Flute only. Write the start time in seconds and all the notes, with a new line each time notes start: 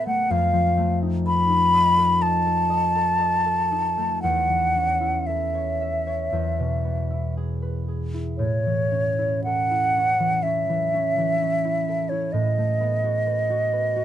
0.07 F#5
0.31 F5
1.27 B5
2.22 A5
4.22 F#5
5.26 E5
8.38 C#5
9.44 F#5
10.43 E5
12.09 C#5
12.32 D#5